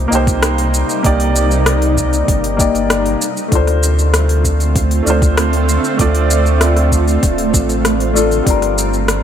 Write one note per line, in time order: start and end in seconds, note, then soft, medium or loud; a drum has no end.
0.00 3.17 C3 medium
0.00 3.17 G3 medium
0.00 0.08 A#3 medium
0.00 3.17 A#3 medium
0.00 0.10 D#4 medium
0.00 3.17 D#4 medium
0.00 0.13 G4 medium
0.00 0.15 C5 medium
0.08 0.84 C2 medium
0.08 0.99 A#3 medium
0.08 1.00 D#4 medium
0.12 1.01 G4 medium
0.12 1.02 C5 medium
0.12 shaker medium
0.27 kick loud
0.27 open hi-hat soft
0.27 shaker soft
0.43 cross-stick loud
0.43 open hi-hat medium
0.43 shaker soft
0.58 open hi-hat soft
0.74 shaker medium
0.90 shaker soft
1.03 2.23 C2 medium
1.03 1.27 A#3 medium
1.03 1.28 D#4 medium
1.03 1.29 G4 medium
1.03 1.29 D5 medium
1.03 kick loud
1.03 open hi-hat medium
1.03 shaker soft
1.20 open hi-hat soft
1.36 shaker medium
1.51 shaker soft
1.66 cross-stick loud
1.66 open hi-hat medium
1.66 shaker soft
1.82 open hi-hat soft
1.97 kick medium
1.97 shaker medium
2.13 open hi-hat soft
2.13 shaker soft
2.28 2.70 G1 medium
2.28 kick loud
2.28 open hi-hat medium
2.28 shaker soft
2.44 open hi-hat soft
2.57 2.73 A#3 medium
2.57 2.74 D#4 medium
2.57 2.74 G4 medium
2.57 2.75 D5 medium
2.57 kick medium
2.57 shaker medium
2.75 3.16 G1 medium
2.75 open hi-hat soft
2.75 shaker soft
2.90 cross-stick loud
2.90 open hi-hat medium
2.90 shaker soft
3.06 open hi-hat soft
3.21 8.43 D3 medium
3.21 8.43 A3 medium
3.21 8.43 C4 medium
3.21 8.43 F4 medium
3.21 shaker medium
3.37 shaker soft
3.48 5.01 D2 loud
3.48 5.01 A3 medium
3.48 5.02 D4 medium
3.48 kick loud
3.48 open hi-hat medium
3.52 5.03 F4 medium
3.52 5.05 C5 medium
3.52 shaker soft
3.67 cross-stick soft
3.67 open hi-hat soft
3.83 shaker medium
3.99 shaker soft
4.14 cross-stick medium
4.14 open hi-hat medium
4.14 shaker soft
4.29 open hi-hat soft
4.45 kick medium
4.45 shaker medium
4.60 open hi-hat soft
4.60 shaker soft
4.76 kick loud
4.76 open hi-hat medium
4.76 shaker soft
4.91 open hi-hat soft
5.03 5.79 D2 medium
5.03 5.94 A3 medium
5.03 5.95 D4 medium
5.07 5.96 F4 medium
5.07 5.97 C5 medium
5.07 shaker medium
5.22 kick loud
5.22 open hi-hat soft
5.22 shaker soft
5.37 cross-stick loud
5.37 open hi-hat medium
5.37 shaker soft
5.53 open hi-hat soft
5.69 shaker medium
5.84 shaker soft
5.97 7.18 D2 loud
5.97 6.22 A3 medium
5.97 6.23 D4 medium
5.97 6.23 F4 medium
5.97 6.24 D5 medium
5.97 kick loud
5.97 open hi-hat medium
5.97 shaker soft
6.15 open hi-hat soft
6.30 shaker medium
6.46 shaker soft
6.61 cross-stick medium
6.61 open hi-hat medium
6.61 shaker soft
6.77 cross-stick soft
6.77 open hi-hat soft
6.92 kick medium
6.92 shaker medium
7.08 open hi-hat soft
7.08 shaker soft
7.23 7.53 D1 medium
7.23 kick loud
7.23 open hi-hat medium
7.23 shaker soft
7.38 open hi-hat soft
7.54 8.42 A1 medium
7.54 kick loud
7.54 shaker medium
7.69 open hi-hat soft
7.69 shaker soft
7.85 cross-stick medium
7.85 open hi-hat medium
7.85 shaker soft
8.00 open hi-hat soft
8.13 8.42 A3 medium
8.13 8.42 D4 medium
8.13 8.43 F4 medium
8.13 8.44 A4 medium
8.13 shaker medium
8.31 open hi-hat soft
8.31 shaker soft
8.43 9.23 G1 medium
8.43 9.23 G3 medium
8.43 9.23 D4 medium
8.43 9.23 F4 medium
8.43 9.23 A#4 medium
8.43 kick loud
8.43 open hi-hat medium
8.47 9.23 F4 medium
8.47 9.23 A#4 medium
8.47 shaker soft
8.62 cross-stick soft
8.62 open hi-hat soft
8.78 shaker medium
8.93 shaker soft
9.08 cross-stick medium
9.08 open hi-hat medium
9.08 shaker soft